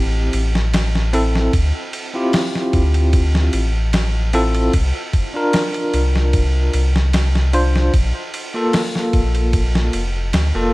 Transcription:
Already playing: A1 C4 E4 G4
0.33 A1, ride
0.55 snare
0.73 snare, ride
0.95 snare
1.13 C4 E4 A4, ride
1.35 snare
1.53 D2, kick, ride
1.93 ride
2.14 C4 E4 F4 G4
2.33 snare, open hi-hat
2.55 snare
2.73 D2, kick, ride
2.94 ride
3.13 kick, ride
3.35 snare
3.53 A1, ride
3.93 snare, ride
4.33 C4 E4 F4 A4, ride
4.55 ride
4.73 C2, kick, ride
5.13 kick, ride
5.34 D4 F4 A#4
5.53 snare, ride
5.74 ride
5.94 C2, ride
6.16 snare
6.33 kick, ride
6.73 C2, ride
6.96 snare
7.13 snare, ride
7.35 snare
7.53 D4 F4 C5, ride
7.76 snare
7.94 A#1, kick, ride
8.34 ride
8.54 A#3 F4 A4
8.73 snare, open hi-hat
8.95 snare
9.13 A#1, kick, ride
9.35 ride
9.53 kick, ride
9.75 snare
9.93 F1, ride
10.33 D2, snare, ride
10.55 F1 A#3 F4 A4

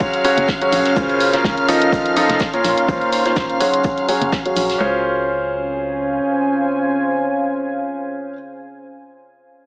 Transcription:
Already playing: F#3 C#4 F#4 G#4 A#4 C#5 F5 C6 F6
0.00 kick, shaker
0.14 closed hi-hat
0.25 F#3 C#4 F#4 G#4 C#5, open hi-hat, shaker
0.31 G#5
0.37 F#1, closed hi-hat
0.48 kick, snare, shaker
0.62 F#3 C#4 F#4 G#4 C#5, closed hi-hat
0.72 A#1, open hi-hat, shaker
0.85 snare, closed hi-hat
0.96 C#2 C#3 C#4 F4 G#4 C5, kick, shaker
1.09 closed hi-hat
1.20 open hi-hat, shaker
1.32 C#3 C#4 F4 G#4 A#4 C6, snare, closed hi-hat
1.40 F5
1.44 C#2, kick, snare, shaker
1.58 closed hi-hat
1.68 F3 D#4 F4 A4 D#5, open hi-hat, shaker
1.82 closed hi-hat
1.92 kick, shaker
2.06 closed hi-hat
2.17 F3 D#4 F4 A4 D#5, open hi-hat, shaker
2.29 F1, snare, closed hi-hat
2.39 kick, snare, shaker
2.54 A#2 C#4 F4 A#4 C#5, closed hi-hat
2.64 A#1 C#4, snare, open hi-hat, shaker
2.78 closed hi-hat
2.88 A#1 A#2 C#4 F4 A#4 C5, kick, shaker
3.01 closed hi-hat
3.08 A#5
3.12 open hi-hat, shaker
3.26 A#2 C#4 F4 A#4 C5, snare, closed hi-hat
3.36 A#1, kick, snare, shaker
3.50 closed hi-hat
3.60 F#3 C#4 F#4 G#4 C#5, open hi-hat, shaker
3.74 closed hi-hat
3.84 kick, shaker
3.98 closed hi-hat
4.08 F#3 C#4 F#4 G#4 C#5, open hi-hat, shaker
4.21 F#1, closed hi-hat
4.32 kick, snare, shaker
4.46 F#3 C#4 F#4 G#4 C#5, closed hi-hat
4.56 A#1, open hi-hat, shaker
4.70 snare, open hi-hat
4.80 C#2 C#4 F4 G#4 C5
4.88 C5
4.96 F5
5.02 G#5

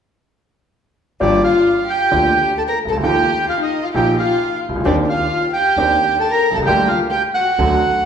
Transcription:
1.20 G1 G2 F3 A#3 D4 G4 D5
1.43 F4 F5
1.87 G4 G5
2.11 D2 D3 F3 A#3 D4 G4
2.57 A4 A5
2.67 A#4 A#5
2.85 C2 A4
2.92 C#2 A5
2.97 D2
3.02 D#2 D#3 F3 A#3 D#4 G4 G5
3.48 F4 F5
3.60 D#4 D#5
3.83 F4 F5
3.94 A#1 A#2 F3 A#3 D#4 G4 G5
4.17 F4 F5
4.69 C2
4.75 C#2
4.80 D2
4.85 D#2 D#3 C4 D4 G4 D5
5.08 F4 F5
5.52 G4 G5
5.77 D#2 D#3 C4 D4 G4
6.18 A4 A5
6.30 A#4 A#5
6.51 B1 A4
6.55 C2 A5
6.62 C#2 G4 G5
6.67 D2 D3 G3 A#3 G4
6.87 F4 F5
7.10 G4 G5
7.34 F#4 F#5
7.58 D2 D3 F#3 A3 F#4

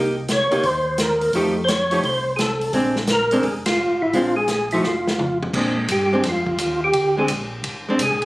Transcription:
Already playing: C2 A#3 D#4 G4
0.28 C#5, snare, closed hi-hat
0.51 C2 A#3 D#4 G4, open hi-hat
0.63 D#2 C5, kick, open hi-hat
0.98 A#4, snare, closed hi-hat
1.21 open hi-hat
1.33 F2 F3 A3 D#4 G4, kick, open hi-hat
1.64 C5, closed hi-hat
1.68 C#5, snare
1.91 F3 A3 D#4 G4, open hi-hat
2.03 C2 C5, kick, open hi-hat
2.36 G#4, snare, closed hi-hat
2.41 A4
2.61 open hi-hat
2.73 A#1 G#3 C4 D4, kick, open hi-hat
2.96 snare
3.07 A#4, snare, closed hi-hat
3.31 G#3 C4 D4, open hi-hat
3.43 F1 G#4, kick, open hi-hat
3.66 F4, snare, ride
3.90 G#1
4.02 A1 E4
4.13 A#1 G#3 C4 D4 F4, kick, open hi-hat
4.36 G#4
4.48 snare, closed hi-hat
4.71 F3 A3 D#4 E4 F#4, open hi-hat
4.84 F1 F4, snare
5.07 snare
5.18 F2, mid tom
5.43 floor tom
5.54 A#2 G#3 C4 D4, kick, crash
5.88 G2 G4, kick, hi-hat pedal, ride
6.13 G#3 C4 D4
6.24 F2, kick, snare, ride
6.29 F4
6.47 kick
6.58 D#2, kick, hi-hat pedal, ride
6.84 G4
6.93 D2, kick, ride
7.17 G#3 C4 D4 G#4
7.28 A#1, kick, hi-hat pedal, ride
7.64 G#1, kick, ride
7.89 G#3 C4 D4
7.99 C2 G#4, kick, hi-hat pedal, ride
8.10 A#1
8.22 G#1, ride

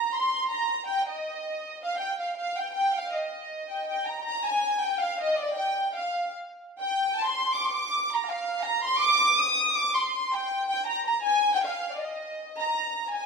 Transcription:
Already playing: A#5
0.12 C6
0.48 A#5
0.87 G5
1.07 D#5
1.84 F5
1.98 G5
2.20 F5
2.36 F5
2.57 G5
2.73 G5
2.94 F5
3.10 D#5
3.68 G5
3.85 G5
4.05 A#5
4.22 A#5
4.44 G#5
4.81 G5
4.99 F5
5.20 D#5
5.35 D5
5.56 G5
5.94 F5
6.81 G5
7.17 A5
7.26 C6
7.54 D6
7.64 C6
7.72 D6
8.13 A#5
8.28 F5
8.62 A#5
8.84 C6
8.99 D6
9.37 D#6
9.74 D6
9.95 C6
10.33 G5
10.69 G5
10.87 A#5
11.07 A#5
11.24 G#5
11.54 G5
11.65 F5
11.93 D5
11.99 D#5
12.60 A#5
13.12 G#5

